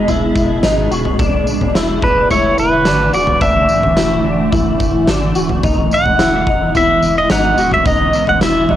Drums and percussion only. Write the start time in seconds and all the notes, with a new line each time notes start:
0.08 floor tom, tambourine
0.35 kick, tambourine
0.63 snare, tambourine
0.92 tambourine
1.05 floor tom
1.19 kick, floor tom, tambourine
1.47 tambourine
1.61 floor tom
1.75 snare, tambourine
2.02 kick, floor tom
2.31 floor tom, tambourine
2.58 tambourine
2.85 snare, tambourine
3.13 tambourine
3.27 floor tom
3.41 kick, floor tom, tambourine
3.69 tambourine
3.83 floor tom
3.97 snare, tambourine
4.53 kick, floor tom, tambourine
4.80 kick, tambourine
5.08 snare, tambourine
5.35 tambourine
5.49 floor tom
5.63 kick, floor tom, tambourine
5.91 tambourine
6.06 floor tom
6.19 snare, tambourine
6.47 kick
6.75 floor tom, tambourine
7.02 tambourine
7.30 snare, tambourine
7.58 tambourine
7.71 floor tom
7.86 kick, floor tom, tambourine
8.13 tambourine
8.27 floor tom
8.41 snare, tambourine
8.69 floor tom